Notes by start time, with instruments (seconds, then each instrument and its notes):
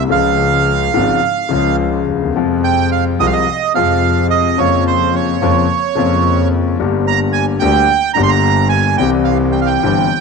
0.08 grand piano C#2 C#3 F3 G#3, double bass C#2, bandoneon F5
0.12 grand piano F4
0.94 double bass G#1, grand piano G#1 G#2 C#3 F3 G#3 F4
1.49 grand piano C#2 C#3 F3 G#3, double bass C#2
1.53 grand piano F4
2.08 double bass D#2
2.15 grand piano D2
2.22 grand piano D#2
2.29 grand piano E2
2.34 double bass F2, grand piano F2 C3 F3 G#3 F4
2.64 bandoneon G5
2.92 bandoneon F5
3.20 double bass C2, grand piano C2 C3 F3 G#3 F4, bandoneon D#5
3.27 bandoneon F5
3.33 bandoneon D#5
3.74 double bass F2, grand piano F2 C3 F3 G#3 F4, bandoneon F5
4.30 bandoneon D#5
4.57 grand piano F2 C#3 F3 A#3 F4, double bass F2, bandoneon C#5
4.87 bandoneon C5
5.15 bandoneon C#5
5.41 double bass F2, grand piano F2 C#3 F3 A#3 F4
5.95 double bass F2, grand piano F2 C#3 F3 A#3 F4
6.78 double bass G1, grand piano G1 G2 D3 G3 A#3
6.82 grand piano G4
7.07 bandoneon A#5
7.33 bandoneon G#5
7.60 double bass D2, grand piano D2 D3 G3 A#3 G4, bandoneon G5
8.14 double bass G1, grand piano G1 G2 D3 G3 A#3, bandoneon A#5
8.18 grand piano G4
8.23 bandoneon C6
8.29 bandoneon A#5
8.69 bandoneon G#5
8.98 double bass C2, grand piano C2 C3 E3 G3 C4, bandoneon G5
9.02 grand piano G4
9.25 bandoneon F5
9.52 bandoneon G5
9.61 bandoneon F5
9.66 bandoneon G5
9.83 double bass G1, grand piano G1 G2 E3 G3 C4 G4